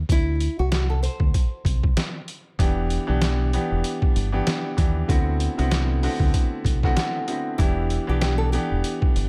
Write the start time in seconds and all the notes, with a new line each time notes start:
0.09 D2 E4, kick, closed hi-hat
0.40 closed hi-hat
0.59 C2 F#4
0.72 F#4, snare, closed hi-hat
0.90 A4
1.03 C5, closed hi-hat
1.20 D2, kick
1.34 kick, closed hi-hat
1.65 C2, kick, closed hi-hat
1.83 kick
1.97 snare, closed hi-hat
2.28 closed hi-hat
2.59 E1 E3 B3 D4 G4, kick, closed hi-hat
2.90 closed hi-hat
3.07 B1 E3 B3 D4 G4
3.22 snare, closed hi-hat
3.53 E3 B3 D4 G4, closed hi-hat
3.71 E1
3.84 closed hi-hat
4.02 kick
4.16 G1, closed hi-hat
4.32 E3 B3 D4 G4
4.47 snare, closed hi-hat
4.77 D#2 E3 B3 D4 G4, kick, closed hi-hat
5.08 D2 D3 A3 B3 C4 E4 F#4, kick, closed hi-hat
5.40 closed hi-hat
5.57 C2 D3 A3 B3 C4 E4 F#4, closed hi-hat
5.71 snare, closed hi-hat
6.03 D3 A3 B3 C4 E4 F#4, open hi-hat
6.20 D2, kick
6.34 kick, closed hi-hat
6.65 C2, kick, closed hi-hat
6.83 D3 A3 B3 C4 E4 F#4, kick, snare
6.96 D3 A3 B3 C4 E4 F#4, snare, closed hi-hat
7.27 D3 A3 B3 C4 E4 F#4, closed hi-hat
7.58 E1 E3 B3 D4 E4 G4, kick, closed hi-hat
7.90 closed hi-hat
8.07 B1 E3 B3 D4 G4
8.21 G4, snare, closed hi-hat
8.38 A4
8.52 E3 B3 D4 G4, closed hi-hat
8.71 E1
8.84 closed hi-hat
9.02 kick
9.16 G1, closed hi-hat